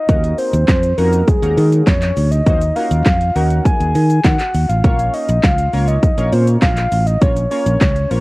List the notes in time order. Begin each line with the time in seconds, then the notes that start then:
Already playing: D#5
0.09 D#2 A#3 C#4 D#4 F#4 A#4, kick, closed hi-hat, shaker
0.24 closed hi-hat, shaker
0.38 C5, open hi-hat, shaker
0.53 D#2, closed hi-hat, shaker
0.68 F2, kick, snare, clap, closed hi-hat, shaker
0.83 closed hi-hat, shaker
0.97 F2 A#3 C#4 D#4 F#4 A#4, open hi-hat, shaker
1.13 closed hi-hat, shaker
1.27 G#4, kick, closed hi-hat, shaker
1.42 D#2 A#3 C#4 D#4 F#4 A#4, closed hi-hat, shaker
1.57 D#3, open hi-hat, shaker
1.72 closed hi-hat, shaker
1.87 F2 C#5, kick, snare, clap, closed hi-hat, shaker
2.02 clap, closed hi-hat, shaker
2.17 D2, open hi-hat, shaker
2.31 D#5, closed hi-hat, shaker
2.46 D#2 A#3 C#4 D#4 F#4 C5, kick, closed hi-hat, shaker
2.62 closed hi-hat, shaker
2.76 A#3 C#4 D#4 F#4 A#4 F5, open hi-hat, shaker
2.91 D#2, closed hi-hat, shaker
3.06 kick, snare, clap, closed hi-hat, shaker
3.21 closed hi-hat, shaker
3.35 D#2 A#3 C#4 D#4 F#4 A#4 F#5, open hi-hat, shaker
3.50 closed hi-hat, shaker
3.65 G#5, kick, closed hi-hat, shaker
3.80 D#2, closed hi-hat, shaker
3.95 D#3, open hi-hat, shaker
4.10 closed hi-hat, shaker
4.24 D#3 F#5, kick, snare, clap, closed hi-hat, shaker
4.39 clap, closed hi-hat, shaker
4.54 D#2, open hi-hat, shaker
4.69 A1 F5, closed hi-hat, shaker
4.84 A#1 A#3 C#4 F4 A#4 C#5, kick, closed hi-hat, shaker
4.99 closed hi-hat, shaker
5.14 D#5, open hi-hat, shaker
5.29 A#1, closed hi-hat, shaker
5.43 F5, kick, snare, clap, closed hi-hat, shaker
5.58 closed hi-hat, shaker
5.73 C#2 A#3 C#4 F4 A#4 C#5, open hi-hat, shaker
5.88 D#5, closed hi-hat, shaker
6.03 kick, closed hi-hat, shaker
6.17 A#1 A#3 C#4 F4 A#4 C#5, closed hi-hat, shaker
6.33 A#2 C5, open hi-hat, shaker
6.47 closed hi-hat, shaker
6.62 A#1 F5, kick, snare, clap, closed hi-hat, shaker
6.77 clap, closed hi-hat, shaker
6.92 A1, open hi-hat, shaker
7.07 D#5, closed hi-hat, shaker
7.21 A#1 A#3 C#4 F4 A#4 C#5, kick, closed hi-hat, shaker
7.37 closed hi-hat, shaker
7.51 A#3 C#4 F4 A#4 C#5, open hi-hat, shaker
7.66 A#1, closed hi-hat, shaker
7.81 C#2, kick, snare, clap, closed hi-hat, shaker
7.96 closed hi-hat, shaker
8.10 A#1 A#3 C#4 F4 A#4 C5 C#5, open hi-hat, shaker